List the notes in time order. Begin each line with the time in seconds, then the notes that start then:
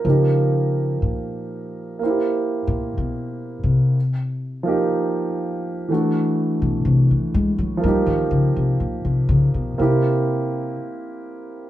Already playing: A#4
0.05 C#3 F3 A#3 D#4
0.09 G4
1.02 A#2
1.99 A#3
2.03 E4 C5
2.10 G4
2.67 A#2
2.98 B2
3.64 C3
4.63 F3 A#3 D#4
4.68 G4
5.88 E3 A3 D4 F#4
6.62 B2
6.85 C3
7.11 E3
7.34 G#3
7.58 F#3
7.77 F3 A#3
7.84 G3 D#4
7.88 G4
8.06 D#3
8.31 C#3
8.56 C3
8.80 A#2
9.05 C3
9.29 C#3
9.54 B2
9.78 C3 A#3 C4 E4 G4